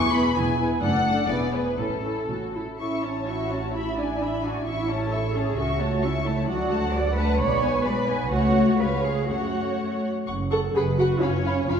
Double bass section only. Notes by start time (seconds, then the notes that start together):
Already playing: E1
0.36 E1
0.83 F#1
1.30 E1
1.79 A1
2.29 A1
2.79 A1
4.66 A1
5.57 C#2
6.49 D2
7.40 B1
8.32 C#2
8.79 C#2
9.29 F#2
10.27 F#1
10.75 F#1
11.22 F#1
11.69 F#1